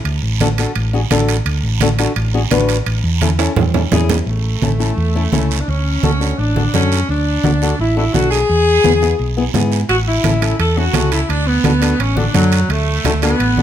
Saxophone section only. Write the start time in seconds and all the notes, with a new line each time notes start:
4.28 A3
5.60 D4
5.69 C#4
6.04 C#4
6.38 D4
6.74 C#4
7.09 D4
7.79 E4
7.97 E4
8.13 F#4
8.31 G#4
9.89 F#4
10.07 E4
10.59 A4
10.77 F#4
11.12 E4
11.29 D4
11.47 B3
11.99 C#4
12.16 D4
12.34 F#3
12.70 A3
13.22 B3